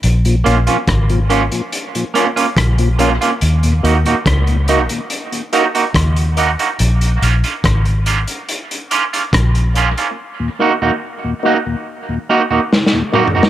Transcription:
<<
  \new Staff \with { instrumentName = "Clean electric guitar" } { \time 4/4 \key bes \minor \tempo 4 = 71 r8 <bes des' f'>16 <bes des' f'>16 r8 <bes des' f'>16 r8. <bes des' f'>16 <bes des' f'>16 r8 <bes des' f'>16 <bes des' f'>16 | r8 <bes ees' ges'>16 <bes ees' ges'>16 r8 <bes ees' ges'>16 r8. <bes ees' ges'>16 <bes ees' ges'>16 r8 <bes ees' ges'>16 <bes ees' ges'>16 | r8 <bes des' f'>16 <bes des' f'>16 r8 <bes des' f'>16 r8. <bes des' f'>16 <bes des' f'>16 r8 <bes des' f'>16 <bes des' f'>16 | r8 <bes ees' ges'>16 <bes ees' ges'>16 r8 <bes ees' ges'>16 r8. <bes ees' ges'>16 <bes ees' ges'>16 r8 <bes ees' ges'>16 <bes ees' ges'>16 | }
  \new Staff \with { instrumentName = "Tonewheel organ" } { \time 4/4 \key bes \minor r8 <bes des' f'>8 r8 <bes des' f'>8 r8 <bes des' f'>8 r8 <bes des' f'>8 | r8 <bes ees' ges'>8 r8 <bes ees' ges'>8 r8 <bes ees' ges'>8 r8 <bes ees' ges'>8 | r8 <bes des' f'>8 r8 <bes des' f'>8 r8 <bes des' f'>8 r8 <bes des' f'>8 | r8 <bes ees' ges'>8 r8 <bes ees' ges'>8 r8 <bes ees' ges'>8 r8 <bes ees' ges'>8 | }
  \new Staff \with { instrumentName = "Tonewheel organ" } { \clef bass \time 4/4 \key bes \minor r16 <bes, f>16 r16 <bes, f>16 r16 <bes, f>16 r16 <bes, f>16 r16 <bes, f>16 r8. <bes, f>16 r8 | r16 <ees, bes,>16 r16 <ees, bes,>16 r16 <ees, bes,>16 r16 <ees, bes,>16 r16 <ees, bes,>16 r16 <ees, bes,>16 r16 <ees, bes,>16 r16 <ees, bes,>16 | r16 <bes, f>16 r16 <bes, f>16 r16 <bes, f>16 r16 <bes, f>16 r16 <bes, f>16 r8. <bes, f>16 r8 | r16 <ees, bes,>16 r16 <ees, bes,>16 r16 <ees, bes,>16 r16 <ees, bes,>16 r16 <ees, bes,>16 r16 <ees, bes,>16 r16 <ees, bes,>16 r16 <ees, bes,>16 | }
  \new Staff \with { instrumentName = "Fingered electric bass" } { \clef bass \time 4/4 \key bes \minor bes,,8 bes,,16 r16 aes,,8. r4 r16 bes,,8. r16 | ees,8 ees,16 r16 des,8. r4 r16 ees,8. r16 | bes,,8 bes,,16 r16 aes,,8. r4 r16 bes,,8. r16 | r1 | }
  \new DrumStaff \with { instrumentName = "Drums" } \drummode { \time 4/4 hh16 hh16 hh16 hh16 <hh bd ss>16 hh16 hh16 hh16 hh16 hh16 hh16 hh16 <hh bd ss>16 hh16 hh16 hh16 | hh16 hh16 hh16 hh16 <hh bd ss>16 hh16 hh16 hh16 hh16 hh16 hh16 hh16 <hh bd ss>16 hh16 hh16 hh16 | hh16 hh16 hh16 hh16 <hh bd ss>16 hh16 hh16 hh16 hh16 hh16 hh16 hh16 <hh bd ss>16 hh16 hh16 hh16 | r4 r4 r4 \tuplet 3/2 { sn16 sn16 r16 toml16 tomfh16 sn16 } | }
>>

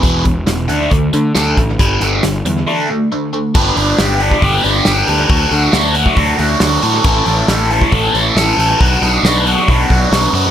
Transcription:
<<
  \new Staff \with { instrumentName = "Overdriven electric guitar" } { \time 4/4 \key g \lydian \tempo 4 = 137 <e, b, e>8 <e, b,>8 <e, b,>8 <d a d'>8 <d a>8 <d a>8 <d a d'>8 <d a>8 | <g, d g>8 <g, d g>8 <g, d>8 <g, d>8 <d a d'>8 <d a>8 <d a>8 <d a>8 | <g, d g b d' g'>8 <g, d g b d' g'>8 <g, d g b d' g'>8 <g, d g b d' g'>8 <g, d g b d' g'>8 <g, d g b d' g'>8 <g, d g b d' g'>8 <g, d g b d' g'>8 | <d fis a d' fis'>8 <d fis a d' fis'>8 <d fis a d' fis'>8 <d fis a d' fis'>8 <d fis a d' fis'>8 <d fis a d' fis'>8 <d fis a d' fis'>8 <d fis a d' fis'>8 |
<a, e a cis' a'>8 <a, e a cis' a'>8 <a, e a cis' a'>8 <a, e a cis' a'>8 <a, e a cis' a'>8 <a, e a cis' a'>8 <a, e a cis' a'>8 <a, e a cis' a'>8 | <b, fis b d' fis'>8 <b, fis b d' fis'>8 <b, fis b d' fis'>8 <b, fis b d' fis'>8 <b, fis b d' fis'>8 <b, fis b d' fis'>8 <b, fis b d' fis'>8 <b, fis b d' fis'>8 | }
  \new Staff \with { instrumentName = "Picked electric bass" } { \clef bass \time 4/4 \key g \lydian e,,8 e,,8 e,,8 d,8 d,8 d8 d,8 a,,8 | g,,8 g,,8 g,,8 e,8 r2 | g,,8 g,,8 g,,4 g,,8 g,,8 g,,8 d,8 | d,8 d,8 d,4 d,8 d,8 d,8 a,8 |
a,,8 a,,8 a,,4 a,,8 a,,8 a,,8 a,,8 | b,,8 b,,8 b,,4 b,,8 b,,8 b,,8 fis,8 | }
  \new DrumStaff \with { instrumentName = "Drums" } \drummode { \time 4/4 <hh bd>8 <hh bd>8 <hh sn>8 hh8 <hh bd>8 hh8 <hh sn>8 <hh bd>8 | <hh bd>8 hh8 <hh sn>8 hh8 r4 r4 | <cymc bd>8 hho8 <hho sn>8 hho16 bd16 <hho bd>8 hho8 <hho sn>8 hho8 | <hho bd>8 hho8 <hho sn>8 hho16 bd16 <hho bd>8 hho8 <hho sn>8 hho8 |
<cymc bd>8 hho8 <hho sn>8 hho16 bd16 <hho bd>8 hho8 <hho sn>8 hho8 | <hho bd>8 hho8 <hho sn>8 hho8 <hho bd>8 <hho bd>8 <hho sn>8 hho8 | }
>>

